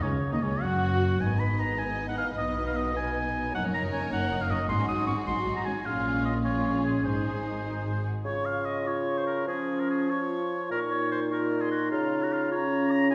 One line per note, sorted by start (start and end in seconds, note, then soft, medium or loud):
0.02 0.10 C#2 medium
0.02 0.31 C#3 medium
0.02 0.10 C#4 medium
0.02 0.32 C#5 medium
0.31 0.41 D#2 medium
0.31 0.41 D#3 soft
0.31 0.41 D#4 medium
0.31 0.36 D#4 medium
0.31 0.42 D#4 medium
0.31 0.44 D#5 soft
0.42 0.50 C#2 medium
0.42 0.50 C#2 soft
0.42 0.62 C#3 medium
0.42 0.61 C#4 soft
0.42 0.50 C#4 medium
0.42 0.62 C#4 medium
0.42 0.63 C#5 medium
0.61 1.20 F#1 medium
0.61 1.20 F#2 medium
0.61 1.20 F#3 medium
0.61 1.19 F#4 medium
0.61 1.20 F#4 medium
0.61 1.21 F#4 medium
0.61 1.22 F#5 medium
1.21 2.33 G#1 soft
1.21 2.33 G#2 soft
1.21 1.75 B3 soft
1.21 1.75 D#4 soft
1.21 3.51 D#4 soft
1.21 3.51 B4 soft
1.21 3.51 D#5 medium
1.21 1.41 G#5 medium
1.39 1.61 B5 medium
1.60 1.80 A#5 medium
1.78 2.36 B3 soft
1.78 2.36 D#4 soft
1.78 2.08 G#5 medium
2.09 2.17 F#5 medium
2.18 2.27 F5 medium
2.37 3.55 B1 soft
2.37 3.55 B2 medium
2.37 2.95 B3 soft
2.37 2.96 D#4 medium
2.37 2.66 D#5 medium
2.67 2.78 F5 medium
2.77 2.96 D#5 medium
2.96 3.54 B3 soft
2.96 3.54 D#4 medium
2.96 3.54 G#5 medium
3.54 3.58 F#1 medium
3.54 3.58 F#2 medium
3.54 4.11 A#3 medium
3.54 3.58 D#4 medium
3.54 4.11 D#4 medium
3.54 4.66 A#4 medium
3.54 4.65 C#5 medium
3.54 3.64 F#5 medium
3.64 3.68 F#2 soft
3.64 3.68 C#4 soft
3.73 3.78 F#1 soft
3.73 3.78 F#2 soft
3.73 3.77 D#4 soft
3.73 3.83 A#5 medium
3.83 3.87 F#2 medium
3.83 3.87 D#4 medium
3.92 3.97 F#1 soft
3.92 3.96 F#2 medium
3.92 3.97 C#4 medium
3.92 4.12 G#5 medium
4.02 4.06 F#2 soft
4.02 4.06 D#4 soft
4.11 4.16 F#1 medium
4.11 4.15 F#2 medium
4.11 4.69 A#3 medium
4.11 4.15 D#4 medium
4.11 4.68 D#4 soft
4.11 4.43 F#5 medium
4.31 4.35 F#1 medium
4.31 4.35 F#2 soft
4.31 4.35 D#4 soft
4.40 4.44 F#2 medium
4.40 4.45 D#4 medium
4.40 4.52 F5 medium
4.50 4.54 F#1 soft
4.50 4.54 F#2 soft
4.50 4.54 C#4 soft
4.50 4.69 D#5 medium
4.68 4.73 G#1 medium
4.68 4.73 G#2 medium
4.68 5.26 F#3 medium
4.68 4.73 D#4 medium
4.68 5.26 D#4 medium
4.68 5.83 F#4 medium
4.68 5.82 G#4 medium
4.68 4.88 C6 medium
4.79 4.83 G#2 soft
4.79 4.83 C#4 soft
4.88 4.92 G#1 soft
4.88 4.92 G#2 soft
4.88 4.92 D#4 soft
4.88 5.06 D#6 medium
4.97 5.02 G#2 medium
4.97 5.01 D#4 medium
5.07 5.11 G#1 soft
5.07 5.11 G#2 soft
5.07 5.11 C#4 medium
5.07 5.16 C#6 medium
5.16 5.21 G#2 soft
5.16 5.21 D#4 soft
5.26 5.31 G#1 medium
5.26 5.30 G#2 medium
5.26 5.84 F#3 medium
5.26 5.31 D#4 medium
5.26 5.84 D#4 medium
5.26 5.56 C6 medium
5.45 5.51 G#1 soft
5.45 5.50 G#2 soft
5.45 5.50 D#4 soft
5.55 5.59 G#2 medium
5.55 5.60 D#4 medium
5.55 5.67 A#5 medium
5.65 5.70 G#1 soft
5.65 5.69 G#2 soft
5.65 5.70 C#4 soft
5.65 5.87 G#5 medium
5.85 7.01 A#1 soft
5.85 7.00 A#2 soft
5.85 6.27 G#3 soft
5.85 6.40 C#4 soft
5.85 6.27 C#4 medium
5.85 6.40 F4 medium
5.85 6.40 G#4 medium
5.85 6.25 F5 medium
6.25 6.34 D#5 medium
6.44 7.03 G#3 soft
6.44 7.03 C#4 soft
6.44 7.04 F4 soft
6.44 7.03 G#4 soft
6.44 6.84 C#5 medium
6.85 7.04 G#4 medium
7.04 8.04 G#1 soft
7.04 8.04 G#2 soft
7.04 8.04 G#3 soft
7.04 8.05 D#4 soft
7.04 8.06 D#4 soft
7.04 7.60 G#4 soft
7.04 8.04 G#4 soft
7.04 8.04 C5 soft
7.65 7.73 A#4 soft
7.85 8.05 G#4 soft
8.05 8.13 F#4 soft
8.25 9.44 C#3 soft
8.25 8.83 F4 soft
8.25 9.44 F4 soft
8.25 8.47 C#5 medium
8.25 8.83 C#6 soft
8.46 8.67 F5 medium
8.65 8.89 D#5 medium
8.87 9.46 F4 soft
8.87 9.20 C#5 medium
8.87 9.47 C#6 soft
9.18 9.26 C5 soft
9.27 9.47 A#4 medium
9.46 10.68 F3 medium
9.46 10.10 C#4 soft
9.46 10.08 F4 soft
9.46 9.81 G#4 medium
9.46 10.09 C#6 soft
9.80 9.89 A#4 soft
9.90 10.12 G#4 soft
10.09 10.70 F4 soft
10.09 10.70 F4 medium
10.09 10.71 C#5 medium
10.09 10.69 C#6 soft
10.71 11.89 A#2 medium
10.71 12.51 D#4 medium
10.71 11.30 F4 soft
10.71 10.80 A#4 medium
10.71 11.30 C#6 soft
10.91 11.11 C#5 medium
11.12 11.21 C5 medium
11.31 11.90 F4 soft
11.31 11.63 A#4 medium
11.31 11.38 C#6 soft
11.61 11.71 G#4 medium
11.61 11.91 C6 medium
11.72 11.90 F#4 medium
11.91 13.15 C#3 medium
11.91 12.24 F4 medium
11.91 12.50 F4 soft
11.91 12.50 A#5 soft
12.23 12.34 F#4 soft
12.33 12.51 F4 medium
12.51 13.10 C#4 medium
12.51 13.10 F4 medium
12.51 12.92 C#5 medium
12.51 13.10 A#5 soft
12.91 13.10 A#5 medium
13.10 13.15 F4 medium
13.10 13.15 G#5 medium
13.10 13.15 C6 medium